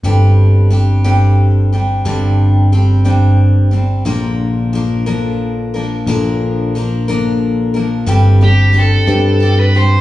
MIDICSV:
0, 0, Header, 1, 4, 480
1, 0, Start_track
1, 0, Tempo, 668896
1, 27, Time_signature, 6, 3, 24, 8
1, 7182, End_track
2, 0, Start_track
2, 0, Title_t, "Lead electric guitar"
2, 0, Program_c, 0, 29
2, 6052, Note_on_c, 0, 67, 62
2, 6287, Note_off_c, 0, 67, 0
2, 6306, Note_on_c, 0, 69, 89
2, 6883, Note_off_c, 0, 69, 0
2, 6886, Note_on_c, 0, 71, 88
2, 7000, Note_off_c, 0, 71, 0
2, 7011, Note_on_c, 0, 72, 98
2, 7182, Note_off_c, 0, 72, 0
2, 7182, End_track
3, 0, Start_track
3, 0, Title_t, "Steel-string acoustic guitar"
3, 0, Program_c, 1, 25
3, 28, Note_on_c, 1, 43, 71
3, 31, Note_on_c, 1, 50, 67
3, 31, Note_on_c, 1, 55, 81
3, 34, Note_on_c, 1, 60, 78
3, 37, Note_on_c, 1, 67, 74
3, 38, Note_on_c, 1, 62, 74
3, 497, Note_off_c, 1, 55, 0
3, 503, Note_off_c, 1, 60, 0
3, 505, Note_on_c, 1, 55, 59
3, 508, Note_off_c, 1, 43, 0
3, 510, Note_off_c, 1, 50, 0
3, 512, Note_on_c, 1, 60, 58
3, 513, Note_off_c, 1, 67, 0
3, 514, Note_off_c, 1, 62, 0
3, 517, Note_on_c, 1, 62, 65
3, 523, Note_on_c, 1, 67, 67
3, 740, Note_off_c, 1, 67, 0
3, 742, Note_off_c, 1, 62, 0
3, 747, Note_off_c, 1, 55, 0
3, 749, Note_on_c, 1, 67, 78
3, 750, Note_off_c, 1, 60, 0
3, 751, Note_on_c, 1, 62, 67
3, 756, Note_on_c, 1, 55, 64
3, 758, Note_on_c, 1, 60, 66
3, 761, Note_on_c, 1, 50, 53
3, 762, Note_on_c, 1, 43, 58
3, 1230, Note_off_c, 1, 67, 0
3, 1233, Note_off_c, 1, 55, 0
3, 1234, Note_off_c, 1, 60, 0
3, 1235, Note_off_c, 1, 50, 0
3, 1236, Note_off_c, 1, 43, 0
3, 1238, Note_on_c, 1, 67, 51
3, 1241, Note_off_c, 1, 62, 0
3, 1244, Note_on_c, 1, 62, 46
3, 1252, Note_on_c, 1, 55, 38
3, 1252, Note_on_c, 1, 60, 41
3, 1468, Note_off_c, 1, 55, 0
3, 1472, Note_off_c, 1, 62, 0
3, 1472, Note_on_c, 1, 43, 76
3, 1473, Note_off_c, 1, 60, 0
3, 1474, Note_off_c, 1, 67, 0
3, 1475, Note_on_c, 1, 50, 82
3, 1477, Note_on_c, 1, 55, 71
3, 1481, Note_on_c, 1, 60, 85
3, 1481, Note_on_c, 1, 62, 81
3, 1484, Note_on_c, 1, 67, 83
3, 1945, Note_off_c, 1, 55, 0
3, 1949, Note_off_c, 1, 60, 0
3, 1951, Note_off_c, 1, 43, 0
3, 1953, Note_off_c, 1, 50, 0
3, 1954, Note_on_c, 1, 55, 56
3, 1958, Note_off_c, 1, 67, 0
3, 1958, Note_on_c, 1, 60, 71
3, 1966, Note_off_c, 1, 62, 0
3, 1969, Note_on_c, 1, 62, 61
3, 1971, Note_on_c, 1, 67, 66
3, 2177, Note_off_c, 1, 67, 0
3, 2182, Note_off_c, 1, 62, 0
3, 2183, Note_off_c, 1, 60, 0
3, 2186, Note_on_c, 1, 67, 66
3, 2190, Note_off_c, 1, 55, 0
3, 2191, Note_on_c, 1, 60, 66
3, 2191, Note_on_c, 1, 62, 67
3, 2197, Note_on_c, 1, 50, 62
3, 2199, Note_on_c, 1, 55, 54
3, 2203, Note_on_c, 1, 43, 61
3, 2653, Note_off_c, 1, 67, 0
3, 2662, Note_on_c, 1, 67, 50
3, 2669, Note_off_c, 1, 60, 0
3, 2669, Note_off_c, 1, 62, 0
3, 2672, Note_on_c, 1, 62, 49
3, 2674, Note_off_c, 1, 50, 0
3, 2675, Note_off_c, 1, 55, 0
3, 2677, Note_off_c, 1, 43, 0
3, 2677, Note_on_c, 1, 60, 49
3, 2685, Note_on_c, 1, 55, 44
3, 2905, Note_off_c, 1, 62, 0
3, 2906, Note_off_c, 1, 55, 0
3, 2906, Note_on_c, 1, 46, 74
3, 2907, Note_off_c, 1, 67, 0
3, 2909, Note_on_c, 1, 53, 84
3, 2911, Note_off_c, 1, 60, 0
3, 2911, Note_on_c, 1, 50, 78
3, 2914, Note_on_c, 1, 58, 87
3, 2914, Note_on_c, 1, 62, 77
3, 2921, Note_on_c, 1, 70, 75
3, 3385, Note_off_c, 1, 53, 0
3, 3389, Note_off_c, 1, 46, 0
3, 3392, Note_off_c, 1, 50, 0
3, 3393, Note_off_c, 1, 58, 0
3, 3394, Note_on_c, 1, 53, 63
3, 3396, Note_off_c, 1, 70, 0
3, 3407, Note_off_c, 1, 62, 0
3, 3408, Note_on_c, 1, 58, 63
3, 3409, Note_on_c, 1, 62, 70
3, 3416, Note_on_c, 1, 70, 62
3, 3624, Note_off_c, 1, 62, 0
3, 3624, Note_off_c, 1, 70, 0
3, 3631, Note_off_c, 1, 58, 0
3, 3633, Note_off_c, 1, 53, 0
3, 3633, Note_on_c, 1, 62, 66
3, 3633, Note_on_c, 1, 70, 73
3, 3639, Note_on_c, 1, 58, 62
3, 3642, Note_on_c, 1, 50, 55
3, 3642, Note_on_c, 1, 53, 62
3, 3648, Note_on_c, 1, 46, 49
3, 4109, Note_off_c, 1, 70, 0
3, 4115, Note_off_c, 1, 58, 0
3, 4117, Note_off_c, 1, 50, 0
3, 4117, Note_off_c, 1, 53, 0
3, 4118, Note_on_c, 1, 70, 49
3, 4120, Note_off_c, 1, 46, 0
3, 4126, Note_off_c, 1, 62, 0
3, 4129, Note_on_c, 1, 62, 47
3, 4133, Note_on_c, 1, 58, 46
3, 4136, Note_on_c, 1, 53, 43
3, 4355, Note_off_c, 1, 70, 0
3, 4357, Note_off_c, 1, 53, 0
3, 4357, Note_on_c, 1, 46, 82
3, 4358, Note_on_c, 1, 50, 82
3, 4359, Note_off_c, 1, 58, 0
3, 4360, Note_off_c, 1, 62, 0
3, 4366, Note_on_c, 1, 53, 79
3, 4367, Note_on_c, 1, 62, 84
3, 4368, Note_on_c, 1, 58, 86
3, 4370, Note_on_c, 1, 70, 84
3, 4834, Note_off_c, 1, 46, 0
3, 4834, Note_off_c, 1, 50, 0
3, 4835, Note_off_c, 1, 53, 0
3, 4839, Note_off_c, 1, 58, 0
3, 4839, Note_off_c, 1, 62, 0
3, 4840, Note_off_c, 1, 70, 0
3, 4844, Note_on_c, 1, 53, 62
3, 4850, Note_on_c, 1, 58, 67
3, 4856, Note_on_c, 1, 62, 66
3, 4865, Note_on_c, 1, 70, 69
3, 5072, Note_off_c, 1, 70, 0
3, 5077, Note_off_c, 1, 53, 0
3, 5080, Note_off_c, 1, 58, 0
3, 5080, Note_off_c, 1, 62, 0
3, 5081, Note_on_c, 1, 70, 71
3, 5089, Note_on_c, 1, 62, 62
3, 5090, Note_on_c, 1, 58, 66
3, 5092, Note_on_c, 1, 53, 62
3, 5097, Note_on_c, 1, 46, 59
3, 5099, Note_on_c, 1, 50, 58
3, 5545, Note_off_c, 1, 70, 0
3, 5551, Note_off_c, 1, 62, 0
3, 5554, Note_on_c, 1, 70, 51
3, 5559, Note_on_c, 1, 62, 51
3, 5560, Note_off_c, 1, 58, 0
3, 5561, Note_off_c, 1, 53, 0
3, 5563, Note_off_c, 1, 46, 0
3, 5564, Note_off_c, 1, 50, 0
3, 5570, Note_on_c, 1, 58, 50
3, 5571, Note_on_c, 1, 53, 42
3, 5787, Note_on_c, 1, 43, 85
3, 5791, Note_on_c, 1, 50, 90
3, 5792, Note_off_c, 1, 53, 0
3, 5792, Note_off_c, 1, 62, 0
3, 5792, Note_off_c, 1, 70, 0
3, 5795, Note_on_c, 1, 55, 82
3, 5797, Note_off_c, 1, 58, 0
3, 5800, Note_on_c, 1, 60, 85
3, 5800, Note_on_c, 1, 62, 76
3, 5803, Note_on_c, 1, 67, 89
3, 6025, Note_off_c, 1, 67, 0
3, 6028, Note_off_c, 1, 43, 0
3, 6028, Note_off_c, 1, 62, 0
3, 6030, Note_off_c, 1, 50, 0
3, 6032, Note_off_c, 1, 55, 0
3, 6033, Note_on_c, 1, 67, 47
3, 6035, Note_off_c, 1, 60, 0
3, 6037, Note_on_c, 1, 62, 49
3, 6044, Note_on_c, 1, 60, 47
3, 6053, Note_on_c, 1, 55, 41
3, 6253, Note_off_c, 1, 55, 0
3, 6261, Note_off_c, 1, 60, 0
3, 6261, Note_on_c, 1, 55, 52
3, 6264, Note_off_c, 1, 62, 0
3, 6270, Note_on_c, 1, 60, 61
3, 6271, Note_off_c, 1, 67, 0
3, 6272, Note_on_c, 1, 62, 65
3, 6282, Note_on_c, 1, 67, 68
3, 6501, Note_off_c, 1, 67, 0
3, 6505, Note_off_c, 1, 55, 0
3, 6505, Note_off_c, 1, 62, 0
3, 6509, Note_off_c, 1, 60, 0
3, 6509, Note_on_c, 1, 67, 66
3, 6513, Note_on_c, 1, 62, 67
3, 6519, Note_on_c, 1, 50, 57
3, 6520, Note_on_c, 1, 55, 57
3, 6520, Note_on_c, 1, 60, 56
3, 6525, Note_on_c, 1, 43, 53
3, 6738, Note_off_c, 1, 55, 0
3, 6746, Note_on_c, 1, 55, 57
3, 6748, Note_off_c, 1, 67, 0
3, 6750, Note_off_c, 1, 62, 0
3, 6753, Note_off_c, 1, 50, 0
3, 6754, Note_off_c, 1, 60, 0
3, 6756, Note_off_c, 1, 43, 0
3, 6761, Note_on_c, 1, 60, 49
3, 6763, Note_on_c, 1, 62, 55
3, 6765, Note_on_c, 1, 67, 66
3, 6986, Note_off_c, 1, 67, 0
3, 6987, Note_off_c, 1, 55, 0
3, 6994, Note_off_c, 1, 60, 0
3, 6994, Note_on_c, 1, 67, 51
3, 6995, Note_off_c, 1, 62, 0
3, 7003, Note_on_c, 1, 62, 45
3, 7010, Note_on_c, 1, 60, 40
3, 7015, Note_on_c, 1, 55, 39
3, 7182, Note_off_c, 1, 55, 0
3, 7182, Note_off_c, 1, 60, 0
3, 7182, Note_off_c, 1, 62, 0
3, 7182, Note_off_c, 1, 67, 0
3, 7182, End_track
4, 0, Start_track
4, 0, Title_t, "Picked electric bass"
4, 0, Program_c, 2, 34
4, 25, Note_on_c, 2, 31, 72
4, 1440, Note_off_c, 2, 31, 0
4, 1473, Note_on_c, 2, 31, 75
4, 2884, Note_off_c, 2, 31, 0
4, 2910, Note_on_c, 2, 34, 68
4, 4322, Note_off_c, 2, 34, 0
4, 4352, Note_on_c, 2, 34, 72
4, 5762, Note_off_c, 2, 34, 0
4, 5794, Note_on_c, 2, 31, 99
4, 6429, Note_off_c, 2, 31, 0
4, 6512, Note_on_c, 2, 43, 90
4, 7147, Note_off_c, 2, 43, 0
4, 7182, End_track
0, 0, End_of_file